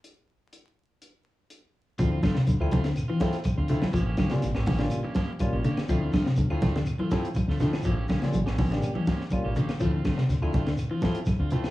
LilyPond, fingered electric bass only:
\new Staff \with { instrumentName = "Fingered electric bass" } { \clef bass \time 4/4 \key d \minor \tempo 4 = 123 r1 | d,8 r8 d,16 d,16 d,8 r4 r16 d,16 r8 | a,,8 r8 a,,16 a,,16 a,,8 r4 r16 a,,16 r8 | d,8 r8 d,16 d,16 d,8 r4 r16 d,16 r8 |
a,,8 r8 a,,16 a,,16 a,,8 r4 r16 a,,16 r8 | d,8 r8 d,16 d,16 d,8 r4 r16 d,16 r8 | }